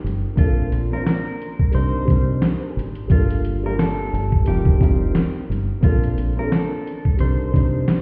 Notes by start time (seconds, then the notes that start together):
Already playing: G3 C4 D#4 F4 A#4
0.04 G1, closed hi-hat
0.36 A#1 A#3 C4 D4 F4, kick, closed hi-hat
0.41 A4
0.72 A#1, closed hi-hat
0.90 A#3 C4 D4 F4 A#4
0.95 C5
1.06 A#4, snare, clap, closed hi-hat
1.42 closed hi-hat
1.59 kick
1.72 C2 G3 C4 D4 D#4 C5, closed hi-hat
1.76 A#4
1.95 muted fingered electric bass stroke
2.05 C2 G3 C4 D4 D#4, kick
2.10 A#4, closed hi-hat
2.42 snare, clap, closed hi-hat
2.76 G#1, closed hi-hat
2.95 closed hi-hat
3.08 G1 G3 A#3 D4 F4, kick, closed hi-hat
3.13 A4
3.30 closed hi-hat
3.45 closed hi-hat
3.63 G3 A#3 D4 F4 A#4
3.68 G4
3.79 A4, snare, clap, closed hi-hat
4.13 G1, closed hi-hat
4.32 kick
4.44 F1 G3 C4 D#4 F4 G4, closed hi-hat
4.49 A#4
4.65 kick
4.79 F1 G3 C4 D#4 F4, kick
4.83 A#4, closed hi-hat
5.15 snare, clap, closed hi-hat
5.49 G1, closed hi-hat
5.81 A#1 A#3 C4 D4 F4, kick, closed hi-hat
5.86 A4
6.03 closed hi-hat
6.18 A#1, closed hi-hat
6.36 A#3 C4 D4 F4 A#4
6.41 A4
6.52 A4, snare, clap, closed hi-hat
6.87 closed hi-hat
7.05 kick
7.17 C2 G3 C4 D4 D#4 C5, closed hi-hat
7.22 A#4
7.41 muted fingered electric bass stroke
7.51 C2 G3 C4 D4 D#4, kick
7.56 C5, closed hi-hat
7.88 snare, clap, closed hi-hat